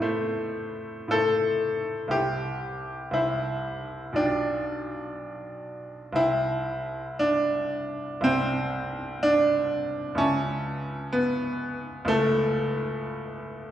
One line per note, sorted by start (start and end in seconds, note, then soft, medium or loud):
0.00 1.06 A2 medium
0.00 1.13 A3 medium
0.00 2.18 B3 medium
0.00 1.08 E4 soft
0.00 1.09 C5 soft
0.00 1.10 E5 soft
1.08 2.09 A2 medium
1.08 2.08 E4 soft
1.08 2.14 A4 loud
1.08 2.09 C5 soft
1.08 2.10 E5 soft
2.08 3.10 C2 medium
2.08 3.12 E4 soft
2.08 3.16 G4 medium
2.08 3.12 C5 soft
2.08 3.13 E5 soft
3.11 4.14 C2 medium
3.11 4.18 E4 medium
3.11 4.15 C5 soft
3.11 4.16 E5 soft
4.13 6.12 B1 medium
4.13 6.17 D4 medium
4.13 6.12 F4 soft
4.13 6.13 D5 soft
4.17 6.14 G5 soft
6.13 8.19 C2 medium
6.13 7.21 E4 loud
6.13 8.20 C5 soft
6.13 8.21 G5 soft
7.19 8.24 D4 loud
8.21 10.15 C2 medium
8.21 9.24 C4 medium
8.21 10.15 E4 medium
8.21 10.16 C5 soft
8.21 10.17 G5 soft
9.23 10.21 D4 loud
10.15 12.03 C#2 medium
10.15 11.15 C#4 loud
10.15 12.04 E4 medium
10.15 12.04 E5 medium
10.15 12.05 A5 medium
11.13 12.08 B3 loud
12.05 13.71 C#2 medium
12.05 13.71 A3 loud
12.05 13.71 E4 medium
12.05 13.71 E5 medium
12.05 13.71 A5 medium